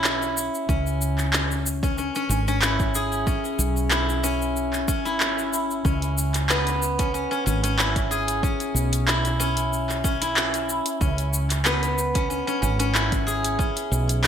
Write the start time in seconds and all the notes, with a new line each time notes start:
Already playing: B1 C#4 E4
0.04 clap, shaker
0.22 shaker
0.37 shaker
0.54 shaker
0.69 C#2 C#4, kick, shaker
0.87 shaker
1.01 shaker
1.18 clap, shaker
1.33 clap, shaker
1.51 shaker
1.66 shaker
1.83 C#4, kick, shaker
1.98 C#4, shaker
2.15 C#4, shaker
2.29 G#1 C#4, shaker
2.48 C#4, shaker
2.62 E4, clap, shaker
2.80 kick, shaker
2.95 G#4, shaker
3.12 shaker
3.27 C#4, kick, shaker
3.45 shaker
3.59 B1, shaker
3.77 shaker
3.91 E4, clap, shaker
4.09 shaker
4.23 C#4, shaker
4.42 shaker
4.56 shaker
4.73 clap, shaker
4.88 G#1 C#4, kick, shaker
5.05 E4, shaker
5.20 clap, shaker
5.39 shaker
5.53 shaker
5.71 shaker
5.85 C#2 C#4, kick, shaker
6.02 closed hi-hat, shaker
6.18 shaker
6.34 clap, closed hi-hat, shaker
6.49 B3, clap, shaker
6.67 closed hi-hat, shaker
6.82 shaker
6.99 C#4, kick, closed hi-hat, shaker
7.14 C#4, shaker
7.31 C#4, shaker
7.46 G#1 C#4, shaker
7.63 C#4, closed hi-hat, shaker
7.78 E4, clap, shaker
7.96 kick, closed hi-hat, shaker
8.11 G#4, shaker
8.28 closed hi-hat, shaker
8.43 C#4, kick, shaker
8.60 closed hi-hat, shaker
8.75 B1, shaker
8.93 closed hi-hat, shaker
9.07 E4, clap, shaker
9.25 closed hi-hat, shaker
9.40 C#4, shaker
9.57 closed hi-hat, shaker
9.73 shaker
9.89 clap, shaker
10.04 C#4, kick, shaker
10.21 E4, closed hi-hat, shaker
10.37 clap, shaker
10.54 closed hi-hat, shaker
10.69 shaker
10.86 closed hi-hat, shaker
11.01 C#2 C#4, kick, shaker
11.18 closed hi-hat, shaker
11.34 shaker
11.50 clap, closed hi-hat, shaker
11.65 B3, clap, shaker
11.83 closed hi-hat, shaker
11.98 shaker
12.15 C#4, kick, closed hi-hat, shaker
12.30 C#4, shaker
12.47 C#4, shaker
12.62 G#1 C#4, shaker
12.79 C#4, closed hi-hat, shaker
12.94 E4, clap, shaker
13.12 kick, closed hi-hat, shaker
13.27 G#4, shaker
13.44 closed hi-hat, shaker
13.59 C#4, kick, shaker
13.77 closed hi-hat, shaker
13.92 B1, shaker
14.09 closed hi-hat, shaker
14.24 E4, clap